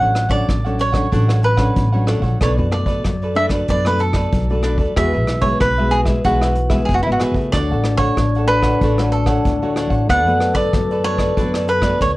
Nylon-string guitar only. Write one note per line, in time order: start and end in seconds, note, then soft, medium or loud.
0.00 0.46 A2 medium
0.00 0.28 F#3 soft
0.00 0.28 C#4 soft
0.00 0.28 D4 medium
0.30 0.58 F#3 medium
0.30 0.59 C#4 medium
0.30 0.59 D4 medium
0.48 1.09 A2 medium
0.66 0.92 F#3 medium
0.66 0.92 C#4 medium
0.66 0.93 D4 medium
0.94 1.06 F#3 medium
0.94 1.07 C#4 medium
0.94 1.07 D4 medium
1.13 1.74 A2 medium
1.13 1.56 F#3 medium
1.13 1.56 C#4 medium
1.13 1.56 D4 medium
1.58 1.86 F#3 medium
1.58 1.86 C#4 medium
1.58 1.86 D4 medium
1.77 2.38 A2 soft
1.94 2.20 F#3 medium
1.94 2.20 C#4 medium
1.94 2.21 D4 medium
2.23 2.57 A3 soft
2.23 2.57 D4 medium
2.23 2.58 F#4 medium
2.42 3.02 B2 medium
2.58 2.68 A3 medium
2.58 2.68 D4 medium
2.58 2.69 F#4 medium
2.72 3.14 A3 medium
2.72 3.14 D4 medium
2.72 3.14 F#4 medium
3.05 3.66 F#3 medium
3.35 3.46 A3 medium
3.35 3.46 D4 medium
3.35 3.46 F#4 medium
3.50 3.78 A3 medium
3.50 3.78 D4 medium
3.50 3.79 F#4 medium
3.68 4.29 B2 medium
3.86 4.44 A3 medium
3.86 4.45 D4 medium
3.86 4.45 F#4 medium
4.33 4.94 F#3 medium
4.50 4.93 A3 medium
4.50 4.93 D4 medium
4.50 4.93 F#4 medium
4.97 5.58 E3 soft
4.97 5.40 G#3 soft
4.97 5.40 B3 soft
4.97 5.40 F#4 medium
5.42 5.71 G#3 medium
5.42 5.71 B3 medium
5.42 5.71 F#4 medium
5.62 6.22 B2 soft
5.79 6.05 G#3 medium
5.79 6.05 B3 medium
5.79 6.05 F#4 medium
6.07 6.19 G#3 medium
6.07 6.19 B3 medium
6.07 6.19 F#4 medium
6.25 6.86 E3 medium
6.25 6.55 G#3 medium
6.25 6.55 B3 medium
6.25 6.56 F#4 medium
6.71 6.99 G#3 medium
6.71 6.99 B3 medium
6.71 7.00 F#4 medium
6.90 7.50 B2 medium
7.07 7.33 G#3 medium
7.07 7.33 B3 medium
7.07 7.33 F#4 medium
7.34 7.82 A3 medium
7.34 7.83 F#4 medium
7.53 8.14 D3 soft
7.83 8.43 A3 medium
7.83 8.44 F#4 medium
8.18 8.79 A2 soft
8.49 8.92 A3 soft
8.49 8.92 F#4 medium
8.81 9.42 D3 medium
8.98 9.57 A3 medium
8.98 9.57 F#4 medium
9.45 10.06 A2 soft
9.62 10.05 A3 medium
9.62 10.05 F#4 medium
10.09 10.70 D3 soft
10.09 10.19 A3 soft
10.09 10.19 B3 soft
10.09 10.19 F#4 medium
10.25 10.68 A3 medium
10.25 10.69 B3 medium
10.25 10.69 F#4 medium
10.73 11.34 D3 medium
10.73 11.00 A3 soft
10.73 11.01 B3 medium
10.73 11.01 F#4 medium
11.04 11.31 A3 medium
11.04 11.32 B3 medium
11.04 11.32 F#4 medium
11.37 11.98 D3 medium
11.37 11.67 A3 medium
11.37 11.68 B3 medium
11.37 11.68 F#4 medium
11.83 12.11 A3 medium
11.83 12.11 B3 medium
11.83 12.11 F#4 medium
12.02 12.17 D3 medium